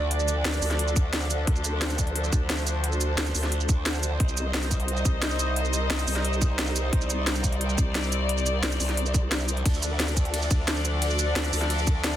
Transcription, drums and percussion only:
0.11 closed hi-hat
0.20 shaker
0.28 closed hi-hat, shaker
0.45 snare, closed hi-hat
0.54 closed hi-hat, shaker
0.62 open hi-hat, shaker
0.71 snare, closed hi-hat
0.79 closed hi-hat
0.88 shaker
0.96 kick, closed hi-hat, shaker
1.13 snare, closed hi-hat
1.22 shaker
1.30 closed hi-hat, shaker
1.47 kick, closed hi-hat
1.56 shaker
1.64 closed hi-hat, shaker
1.81 snare, closed hi-hat
1.90 closed hi-hat, shaker
1.98 kick, closed hi-hat, shaker
2.07 closed hi-hat
2.16 closed hi-hat
2.24 shaker
2.33 kick, closed hi-hat, shaker
2.50 snare, closed hi-hat
2.58 shaker
2.67 closed hi-hat, shaker
2.84 closed hi-hat
2.92 shaker
3.01 closed hi-hat, shaker
3.18 snare, closed hi-hat
3.26 closed hi-hat, shaker
3.35 open hi-hat, shaker
3.43 snare, closed hi-hat
3.52 closed hi-hat
3.60 shaker
3.69 kick, closed hi-hat, shaker
3.86 snare, closed hi-hat
3.94 shaker
4.03 closed hi-hat, shaker
4.20 kick, closed hi-hat
4.29 shaker
4.37 closed hi-hat, shaker
4.54 snare, closed hi-hat
4.63 closed hi-hat, shaker
4.71 kick, closed hi-hat, shaker
4.80 closed hi-hat
4.88 closed hi-hat
4.97 shaker
5.05 kick, closed hi-hat, shaker
5.22 snare, closed hi-hat
5.31 shaker
5.39 closed hi-hat, shaker
5.56 closed hi-hat
5.65 shaker
5.73 closed hi-hat, shaker
5.90 snare, closed hi-hat
5.99 closed hi-hat, shaker
6.08 open hi-hat, shaker
6.16 snare, closed hi-hat
6.25 closed hi-hat
6.33 shaker
6.42 kick, closed hi-hat, shaker
6.59 snare, closed hi-hat
6.67 shaker
6.76 closed hi-hat, shaker
6.93 kick, closed hi-hat
7.01 shaker
7.10 closed hi-hat, shaker
7.27 snare, closed hi-hat
7.35 closed hi-hat, shaker
7.44 kick, closed hi-hat, shaker
7.52 closed hi-hat
7.61 closed hi-hat
7.69 shaker
7.78 kick, closed hi-hat, shaker
7.95 snare, closed hi-hat
8.04 shaker
8.12 closed hi-hat, shaker
8.29 closed hi-hat
8.38 shaker
8.46 closed hi-hat, shaker
8.63 snare, closed hi-hat
8.72 closed hi-hat, shaker
8.80 open hi-hat, shaker
8.89 snare, closed hi-hat
8.97 closed hi-hat
9.06 shaker
9.14 kick, closed hi-hat, shaker
9.32 snare, closed hi-hat
9.40 shaker
9.49 closed hi-hat, shaker
9.57 closed hi-hat
9.66 kick, closed hi-hat, ride
9.74 shaker
9.83 closed hi-hat, shaker
10.00 snare, closed hi-hat, ride
10.08 closed hi-hat, shaker
10.17 kick, closed hi-hat, shaker
10.25 closed hi-hat
10.34 closed hi-hat, ride
10.42 shaker
10.51 kick, closed hi-hat, shaker
10.68 snare, closed hi-hat, ride
10.76 shaker
10.85 closed hi-hat, shaker
11.02 closed hi-hat, ride
11.10 shaker
11.19 closed hi-hat, shaker
11.36 snare, closed hi-hat, ride
11.44 closed hi-hat, shaker
11.53 open hi-hat, shaker
11.62 snare, closed hi-hat
11.70 closed hi-hat, ride
11.79 shaker
11.87 kick, closed hi-hat, shaker
12.04 snare, closed hi-hat, ride
12.13 shaker

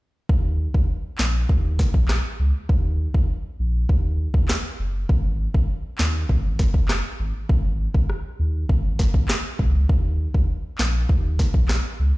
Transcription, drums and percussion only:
0.29 kick
0.74 kick
1.18 snare, clap
1.49 kick
1.79 kick, snare
1.94 kick
2.09 cross-stick, snare, clap
2.69 kick
3.14 kick
3.89 kick
4.34 kick
4.49 cross-stick, snare, clap
5.09 kick
5.54 kick
5.98 snare, clap
6.29 kick
6.59 kick, snare
6.74 kick
6.89 cross-stick, snare, clap
7.49 kick
7.94 kick
8.10 cross-stick
8.69 kick
8.99 kick, snare
9.14 kick
9.29 cross-stick, snare, clap
9.59 kick
9.89 kick
10.34 kick
10.79 snare, clap
11.09 kick
11.39 kick, snare
11.54 kick
11.69 cross-stick, snare, clap

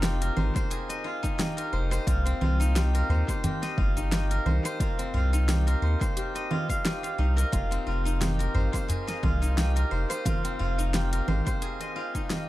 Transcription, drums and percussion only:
0.03 snare, closed hi-hat, cabasa
0.22 closed hi-hat, cabasa
0.37 low conga
0.56 kick, closed hi-hat, cabasa
0.71 closed hi-hat, cabasa
0.90 closed hi-hat, cabasa
1.24 kick, closed hi-hat, cabasa
1.39 snare, closed hi-hat, low conga, cabasa
1.58 closed hi-hat, cabasa
1.92 closed hi-hat, cabasa
2.07 kick, closed hi-hat, cabasa
2.27 closed hi-hat, cabasa
2.42 low conga
2.61 closed hi-hat, cabasa
2.76 snare, closed hi-hat, cabasa
2.95 closed hi-hat, cabasa
3.09 udu
3.28 kick, closed hi-hat, cabasa
3.44 closed hi-hat, low conga, udu, cabasa
3.63 snare, closed hi-hat, cabasa
3.78 kick
3.97 closed hi-hat, cabasa
4.12 snare, closed hi-hat, cabasa
4.31 closed hi-hat, cabasa
4.46 low conga
4.65 closed hi-hat, cabasa
4.80 kick, closed hi-hat, cabasa
4.99 closed hi-hat, cabasa
5.14 udu
5.33 closed hi-hat, cabasa
5.49 snare, closed hi-hat, low conga, cabasa
5.68 closed hi-hat, cabasa
6.01 kick, closed hi-hat, cabasa
6.17 closed hi-hat, cabasa
6.36 closed hi-hat, cabasa
6.51 low conga
6.69 kick, closed hi-hat, cabasa
6.85 snare, closed hi-hat, cabasa
7.04 closed hi-hat, cabasa
7.38 closed hi-hat, cabasa
7.53 kick, closed hi-hat, cabasa
7.72 closed hi-hat, cabasa
8.06 closed hi-hat, cabasa
8.21 snare, closed hi-hat, low conga, cabasa
8.40 closed hi-hat, cabasa
8.54 udu
8.74 kick, closed hi-hat, cabasa
8.89 closed hi-hat, udu, cabasa
9.08 snare, closed hi-hat, cabasa
9.23 kick, low conga
9.43 closed hi-hat, cabasa
9.58 snare, closed hi-hat, cabasa
9.77 closed hi-hat, cabasa
10.11 closed hi-hat, cabasa
10.26 kick, closed hi-hat, low conga, cabasa
10.45 closed hi-hat, cabasa
10.59 udu
10.79 closed hi-hat, cabasa
10.94 snare, closed hi-hat, cabasa
11.13 closed hi-hat, cabasa
11.28 low conga
11.47 kick, closed hi-hat, cabasa
11.62 closed hi-hat, cabasa
11.81 closed hi-hat, cabasa
12.15 kick, closed hi-hat, cabasa
12.30 snare, closed hi-hat, low conga, cabasa

